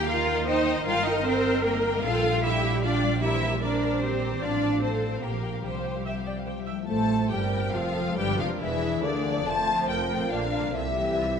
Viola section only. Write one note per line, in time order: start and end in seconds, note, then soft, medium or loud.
0.07 0.47 A#4 medium
0.47 0.85 C5 medium
0.86 2.02 A#4 medium
2.04 2.43 A4 medium
2.44 2.82 G4 medium
2.83 3.23 F4 medium
3.22 3.62 G4 medium
3.62 4.01 A#4 medium
4.02 4.41 G4 medium
4.42 4.82 F4 medium
4.82 5.21 A4 medium
5.22 5.63 G4 soft
5.63 6.00 C5 soft
6.05 6.13 E5 medium
6.26 6.34 D5 soft
6.46 6.54 C5 soft
6.66 6.74 E5 soft
6.88 7.28 A3 medium
7.31 7.74 G3 medium
7.75 8.17 F3 medium
8.17 8.38 G3 medium
8.38 8.60 F3 medium
8.60 9.02 E3 medium
9.03 9.45 D3 medium
9.67 10.08 F3 soft
9.67 10.09 A3 soft
10.10 10.31 F3 soft
10.10 10.31 A3 soft
10.31 10.52 D3 soft
10.31 10.51 A#3 soft
10.53 10.74 D3 soft
10.53 10.74 A#3 soft
10.97 11.40 E3 soft
10.97 11.39 G3 soft